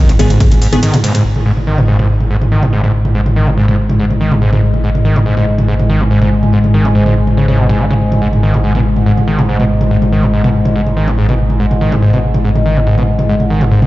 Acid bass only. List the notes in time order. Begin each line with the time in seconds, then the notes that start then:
0.00 D#3
0.09 G#2
0.19 G#2
0.30 G#2
0.61 G#2
0.83 D#3
0.93 G#2
1.04 G#2
1.15 G#2
1.46 G#2
1.67 D#3
1.78 G#2
1.88 G#2
1.99 G#2
2.30 G#2
2.52 D#3
2.62 G#2
2.73 G#2
2.84 G#2
3.15 G#2
3.36 D#3
3.47 G#2
3.57 G#2
3.68 G#2
3.99 G#2
4.21 D#3
4.31 G#2
4.42 G#2
4.53 G#2
4.84 G#2
5.05 D#3
5.16 G#2
5.26 G#2
5.37 G#2
5.68 G#2
5.90 D#3
6.00 G#2
6.11 G#2
6.22 G#2
6.53 G#2
6.74 D#3
6.85 G#2
6.95 G#2
7.06 G#2
7.37 C#3
7.48 C#3
7.58 B2
7.69 G#2
7.80 D#3
7.91 C#3
8.22 G#2
8.43 D#3
8.54 G#2
8.64 G#2
8.75 B2
9.06 G#2
9.28 D#3
9.38 G#2
9.49 G#2
9.60 B2
9.91 G#2
10.12 D#3
10.23 G#2
10.33 G#2
10.44 B2
10.76 G#2
10.97 D#3
11.08 G#2
11.18 G#2
11.29 B2
11.60 G#2
11.81 D#3
11.92 G#2
12.02 G#2
12.13 B2
12.45 G#2
12.66 D#3
12.77 G#2
12.87 G#2
12.98 B2
13.29 G#2
13.50 D#3
13.61 G#2
13.71 G#2
13.82 B2